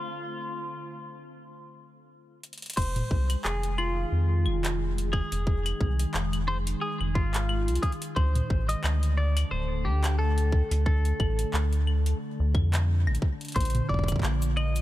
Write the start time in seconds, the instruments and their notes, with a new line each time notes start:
Already playing: clean electric guitar F4
2.43 closed hi-hat
2.53 closed hi-hat
2.58 closed hi-hat
2.62 closed hi-hat
2.66 closed hi-hat
2.70 closed hi-hat
2.73 analog synth bass F1, ambient pad D#3, clean electric guitar C5, kick, closed hi-hat
2.77 closed hi-hat, crash
2.82 closed hi-hat
2.86 ambient pad G#3
2.96 closed hi-hat, mid tom
3.11 analog synth bass C2, kick
3.30 closed hi-hat, claves
3.44 analog synth bass F1, clean electric guitar G#4, clap
3.63 closed hi-hat
3.78 clean electric guitar F4, claves
4.12 analog synth bass F2
4.46 analog synth bass F1, claves
4.65 clap, closed hi-hat
4.98 closed hi-hat
5.13 clean electric guitar G#4, kick, claves
5.32 analog synth bass F1, closed hi-hat
5.47 kick
5.66 closed hi-hat, claves
5.81 analog synth bass C2, kick
5.99 closed hi-hat
6.14 analog synth bass F1, clap
6.33 closed hi-hat, claves
6.48 clean electric guitar C5
6.67 closed hi-hat
6.81 clean electric guitar G#4
7.00 analog synth bass F1, claves
7.15 analog synth bass G#1, clean electric guitar F4, kick
7.34 clap, closed hi-hat
7.49 claves
7.68 analog synth bass C2, closed hi-hat
7.75 closed hi-hat
7.82 clean electric guitar G#4, kick, closed hi-hat
7.92 closed hi-hat
8.02 closed hi-hat
8.16 analog synth bass D2, ambient pad D3, clean electric guitar C5, kick, claves
8.35 closed hi-hat, mid tom
8.50 analog synth bass A1, kick
8.69 clean electric guitar D#5, closed hi-hat
8.77 ambient pad A3
8.84 analog synth bass D2, clap, claves
9.03 closed hi-hat
9.17 clean electric guitar D5
9.37 closed hi-hat, claves
9.51 analog synth bass D1, clean electric guitar C5
9.85 analog synth bass D2, clean electric guitar G4
10.04 clap, closed hi-hat, claves
10.19 clean electric guitar A4
10.38 closed hi-hat
10.52 kick
10.71 analog synth bass D2, closed hi-hat
10.86 clean electric guitar A4, kick
11.05 closed hi-hat
11.20 analog synth bass A1, kick, claves
11.39 closed hi-hat
11.53 analog synth bass D2, clap
11.73 closed hi-hat
11.87 claves
12.06 closed hi-hat
12.40 analog synth bass D2
12.55 analog synth bass F2, kick, claves
12.74 clap, closed hi-hat
13.07 analog synth bass A1, claves
13.15 closed hi-hat
13.22 kick
13.41 closed hi-hat
13.45 closed hi-hat
13.48 closed hi-hat
13.52 analog synth bass A#1, clean electric guitar C5, kick, closed hi-hat
13.56 closed hi-hat
13.61 closed hi-hat
13.65 closed hi-hat
13.70 closed hi-hat
13.75 ambient pad F3, closed hi-hat, mid tom
13.89 analog synth bass F1, clean electric guitar D5, kick
13.94 ambient pad A#3, kick
13.99 kick
14.04 kick
14.08 kick, closed hi-hat, cabasa, claves
14.12 kick
14.16 kick
14.19 analog synth bass A#1, kick, clap
14.42 closed hi-hat, cabasa
14.57 clean electric guitar D#5, claves
14.76 closed hi-hat, cabasa